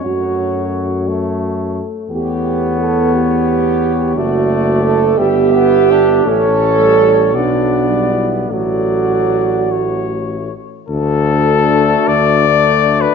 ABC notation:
X:1
M:6/8
L:1/16
Q:3/8=56
K:F#m
V:1 name="Cornet"
c8- c2 z2 | [K:D] c12 | d6 e6 | c6 d6 |
d6 c4 z2 | A6 d4- d B |]
V:2 name="French horn section"
F6 z6 | [K:D] G4 A2 G6 | F4 A2 G6 | A6 D4 E2 |
F8- F2 z2 | z2 F6 F4 |]
V:3 name="Euphonium"
A,12- | [K:D] A,8- A,2 z2 | A,6 B,6 | A,3 G,3 F,3 G,3 |
A,6 A,4 z2 | z2 D6 D4 |]
V:4 name="Trombone"
F,6 A,4 z2 | [K:D] B,12 | A,6 G,2 B,2 D2 | C6 B,6 |
F,8- F, z3 | z2 A,6 A,4 |]
V:5 name="Tuba" clef=bass
F,,8- F,,2 z2 | [K:D] E,,12 | F,,,6 G,,,6 | A,,,6 B,,,6 |
A,,,8- A,,,2 z2 | D,,6 D,,6 |]